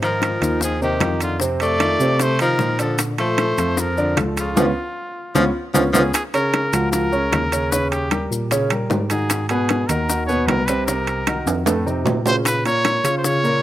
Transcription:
Already playing: G#2
0.02 D#3 F3 D#4 F4 A#4, high bongo, high timbale, maracas
0.22 high bongo, high timbale, maracas
0.41 D#2 D#3 D#4 F4, high bongo, high timbale, maracas
0.61 F3 G#4, high bongo, maracas
0.81 C3 D#3 C4 G4 C5, maracas
1.00 F2 D#3 D#4 F4, high bongo, low bongo, high timbale, maracas
1.20 D3 F4, high bongo, high timbale, maracas
1.40 C3 C4 C5, high bongo, maracas
1.60 A3 D5, high bongo, high timbale, maracas
1.80 D#3 D#4 F4, high bongo, high timbale, maracas
2.00 C3 C4 C5, high bongo, maracas
2.19 A3 C5, high bongo, high timbale, maracas
2.39 D#3 F3 D#4 F4 A#4, high timbale, maracas
2.59 A#2, high bongo, low bongo, maracas
2.79 D3 F3 D4 A4 D5, high bongo, high timbale, maracas
2.98 high bongo, high timbale, maracas
3.18 F3 A3 F4 A4 C5, high bongo, high timbale, maracas
3.38 high bongo, high timbale, maracas
3.58 F2 F3 F4 A4, high bongo, high timbale, maracas
3.77 F3 A#4, high bongo, maracas
3.97 D3 D4 D5, maracas
4.16 C#2 F3 F4 A4, high bongo, low bongo, high timbale, maracas
4.37 C#3 F4, high bongo, high timbale, maracas
4.56 C#2 F3 B3 C#4 F4, low bongo, high timbale, maracas
5.35 C#2 F3 B3 C#4 F4, low bongo, high timbale, maracas
5.74 C#2 F3 B3 C#4 F4, low bongo, high timbale, maracas
5.93 C#2 F3 B3 C#4 F4 G#4, low bongo, high timbale, maracas
6.14 G#4, high bongo, high timbale, maracas
6.34 C#3 C#4 A#4 C#5, high bongo, high timbale, maracas
6.53 high bongo, high timbale, maracas
6.73 C#2 F3 F4 F#4, high bongo, high timbale, maracas
6.92 F3 F4 F#4 A#4, high bongo, maracas
7.12 C#3 C#4 C#5, maracas
7.32 D#2, high bongo, low bongo, high timbale, maracas
7.52 C#3 C#4 C#5, high bongo, high timbale, maracas
7.71 C#3 C#4 B4 C#5, high bongo, maracas
7.91 G4, high bongo, high timbale, maracas
8.11 G3 G4 A#4, high bongo, high timbale, maracas
8.31 A#2, high bongo, maracas
8.51 C#3 C#4 C#5, high bongo, high timbale, maracas
8.70 G3 G4 A#4, high timbale, maracas
8.90 G#2, high bongo, low bongo, low timbale, maracas
9.10 D#3 D#4 F#4 G#4, high bongo, high timbale, maracas
9.30 high bongo, high timbale, maracas
9.49 B2 B3 G#4 B4, high bongo, high timbale, maracas
9.69 high bongo, high timbale, maracas
9.87 D#2 D#3 D#4 F#4 A#4, high bongo, high timbale, maracas
10.09 D#3 D#4 F#4, high bongo, maracas
10.27 B2 B3 B4 C#5, maracas
10.47 C2 A#4, high bongo, low bongo, high timbale, low timbale, maracas
10.66 C3 C4 B4 C5, high bongo, high timbale, maracas
10.86 C3 C4 A#4 C5, high bongo, maracas
11.07 high bongo, high timbale, maracas
11.27 D#3 D#4 F#4, high bongo, high timbale, maracas
11.46 F2, high bongo, high timbale, maracas
11.66 A2 A3 A4, high bongo, high timbale, maracas
11.86 C3 C4 D#4, maracas
12.05 A#2, high bongo, low bongo, low timbale, maracas
12.26 C#3 C#4 F4 C5, high bongo, low timbale, maracas
12.45 B4, high bongo, high timbale, maracas
12.65 A#2 A#3 A#4 C#5, high bongo, high timbale, maracas
12.85 high bongo, high timbale, maracas
13.04 C#3 C#4 F4, high bongo, high timbale, maracas
13.17 C5
13.24 C#3 C#4 F4 C#5, high bongo, maracas
13.44 A#2 A#3 A#4, maracas

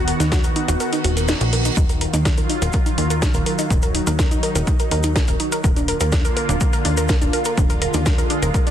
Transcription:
Already playing: D#1 D#3 B3 F#4
0.08 A#4, open hi-hat
0.20 D#2 D#4, snare, closed hi-hat, maracas
0.32 F#4, kick, snare, closed hi-hat, maracas
0.44 A#4, closed hi-hat, maracas
0.56 D#4, open hi-hat
0.68 D#1 F#4, closed hi-hat, maracas
0.80 A#4, closed hi-hat, reverse cymbal, maracas
0.93 D#4, closed hi-hat, maracas
1.04 D#1 F#4, open hi-hat
1.17 A#4, closed hi-hat, maracas
1.28 D#4, snare, closed hi-hat, maracas
1.41 A#1 F#4, closed hi-hat, maracas
1.53 A#4, open hi-hat
1.65 D#4, closed hi-hat, maracas
1.77 D#1 F#3 D#4 F4, kick, closed hi-hat, maracas
1.89 A#4, closed hi-hat, maracas
2.01 A#4, open hi-hat
2.13 D#2 D#4, closed hi-hat, maracas
2.25 A#4, kick, snare, closed hi-hat, maracas
2.37 A#4, closed hi-hat, maracas
2.50 D#4, open hi-hat
2.62 D#1 A#4, closed hi-hat, maracas
2.73 A#4, kick, closed hi-hat, maracas
2.86 D#4, closed hi-hat, maracas
2.98 D#2 A#4, open hi-hat
3.10 A#4, closed hi-hat, maracas
3.22 D#4, kick, snare, closed hi-hat, maracas
3.34 D#1 A#4, closed hi-hat, maracas
3.46 A#4, open hi-hat
3.59 D#4, closed hi-hat, maracas
3.70 D#1 D#4 A#4, kick, closed hi-hat, maracas
3.82 A#4, closed hi-hat, maracas
3.95 D#4, open hi-hat
4.07 D#2 A#4, closed hi-hat, maracas
4.19 A#4, kick, snare, closed hi-hat, maracas
4.31 D#4, closed hi-hat, maracas
4.43 A#4, open hi-hat
4.55 D#1 A#4, closed hi-hat, maracas
4.67 D#4, kick, closed hi-hat, maracas
4.79 A#4, closed hi-hat, maracas
4.91 D#2 A#4, open hi-hat
5.03 D#4, closed hi-hat, maracas
5.16 A#4, kick, snare, closed hi-hat, maracas
5.27 D#1 A#4, closed hi-hat, maracas
5.40 D#4, open hi-hat
5.52 A#4, closed hi-hat, maracas
5.64 D#1 D3 A#3 F4 A#4, kick, closed hi-hat, maracas
5.76 D4, closed hi-hat, maracas
5.88 A#4, open hi-hat
6.00 D#2 A#4, closed hi-hat, maracas
6.12 D4, kick, snare, closed hi-hat, maracas
6.25 A#4, closed hi-hat, maracas
6.37 A#4, open hi-hat
6.49 D#1 D4, closed hi-hat, maracas
6.61 A#4, kick, closed hi-hat, maracas
6.73 A#4, closed hi-hat, maracas
6.85 D#2 D4, open hi-hat
6.97 A#4, closed hi-hat, maracas
7.09 A#4, kick, snare, closed hi-hat, maracas
7.22 D#1 D4, closed hi-hat, maracas
7.33 A#4, open hi-hat
7.45 A#4, closed hi-hat, maracas
7.57 D#1 G#3 D4, kick, closed hi-hat, maracas
7.70 A#4, closed hi-hat, maracas
7.82 A#4, open hi-hat
7.94 D#2 D4, closed hi-hat, maracas
8.06 A#4, kick, snare, closed hi-hat, maracas
8.18 A#4, closed hi-hat, maracas
8.30 D4, open hi-hat
8.43 D#1 A#4, closed hi-hat, maracas
8.54 A#4, kick, closed hi-hat, maracas
8.67 D4, closed hi-hat, maracas

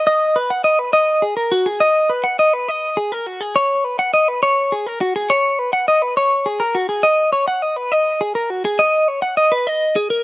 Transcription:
0.07 D#5
0.36 B4
0.50 F#5
0.64 D#5
0.79 B4
0.93 D#5
1.22 G#4
1.37 A#4
1.52 F#4
1.66 G#4
1.80 D#5
2.10 B4
2.24 F#5
2.39 D#5
2.53 B4
2.68 D#5
2.97 G#4
3.12 A#4
3.27 F#4
3.41 G#4
3.56 C#5
3.84 B4
3.99 F#5
4.14 D#5
4.28 B4
4.43 C#5
4.72 G#4
4.87 A#4
5.01 F#4
5.16 G#4
5.30 C#5
5.59 B4
5.73 F#5
5.88 D#5
6.02 B4
6.17 C#5
6.46 G#4
6.60 A#4
6.75 F#4
6.89 G#4
7.03 D#5
7.33 C#5
7.48 F#5
7.62 D#5
7.76 B4
7.92 D#5
8.21 G#4
8.35 A#4
8.50 F#4
8.65 G#4
8.79 D#5
9.08 C#5
9.22 F#5
9.37 D#5
9.52 B4
9.67 D#5
9.96 G#4
10.10 A#4

